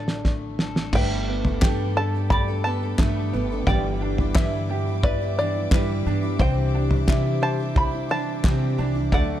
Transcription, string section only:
0.93 B4 G5 A5 D6
3.69 E5
6.41 C5 G5
9.13 A4 D5 F#5

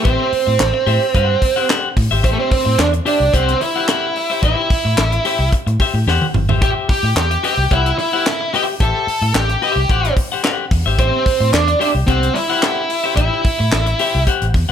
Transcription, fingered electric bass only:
0.05 A1
0.33 muted fingered electric bass stroke
0.47 A2
0.60 A1
0.87 A2
1.15 G2
1.97 A2
2.11 G#1
2.24 A1
2.52 muted fingered electric bass stroke
2.66 A2
2.78 E2
3.20 C2
3.34 C2
4.43 A1
4.70 muted fingered electric bass stroke
4.85 A2
4.97 A1
5.39 C2
5.67 A2
5.94 A2
6.06 E2
6.34 G1
6.49 G#1
6.62 A1
6.89 muted fingered electric bass stroke
7.03 A2
7.16 E2
7.57 C2
7.71 C2
8.80 A1
9.07 muted fingered electric bass stroke
9.22 A2
9.34 A1
9.76 C2
9.90 A1
10.71 E2
10.86 G#1
10.98 A1
11.26 muted fingered electric bass stroke
11.40 A2
11.53 E2
11.95 C2
12.08 C2
13.17 A1
13.45 muted fingered electric bass stroke
13.60 A2
13.72 A1
14.15 C2
14.42 A1
14.54 E2

